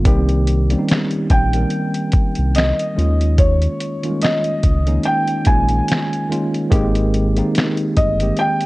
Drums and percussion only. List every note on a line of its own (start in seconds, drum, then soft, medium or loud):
0.05 kick loud
0.05 closed hi-hat medium
0.29 closed hi-hat soft
0.47 closed hi-hat medium
0.70 closed hi-hat soft
0.88 snare loud
0.88 closed hi-hat medium
0.93 finger snap medium
1.11 closed hi-hat medium
1.30 kick medium
1.30 closed hi-hat medium
1.53 closed hi-hat medium
1.70 closed hi-hat medium
1.94 closed hi-hat soft
2.12 kick medium
2.12 closed hi-hat medium
2.35 closed hi-hat soft
2.55 snare loud
2.55 closed hi-hat medium
2.60 finger snap medium
2.79 closed hi-hat soft
2.99 closed hi-hat medium
3.21 closed hi-hat soft
3.38 kick loud
3.38 closed hi-hat medium
3.62 closed hi-hat soft
3.80 closed hi-hat medium
4.03 closed hi-hat soft
4.22 snare loud
4.22 closed hi-hat medium
4.26 finger snap medium
4.44 closed hi-hat soft
4.63 kick medium
4.63 closed hi-hat medium
4.87 closed hi-hat medium
5.04 closed hi-hat medium
5.28 closed hi-hat medium
5.45 kick medium
5.45 closed hi-hat medium
5.69 closed hi-hat soft
5.88 snare loud
5.88 closed hi-hat medium
5.93 finger snap loud
6.13 closed hi-hat soft
6.32 closed hi-hat medium
6.54 closed hi-hat soft
6.72 kick loud
6.72 closed hi-hat medium
6.95 closed hi-hat soft
7.14 closed hi-hat medium
7.37 closed hi-hat soft
7.55 snare loud
7.55 closed hi-hat medium
7.59 finger snap medium
7.77 closed hi-hat soft
7.97 kick medium
7.97 closed hi-hat medium
8.20 closed hi-hat medium
8.37 closed hi-hat medium
8.61 closed hi-hat soft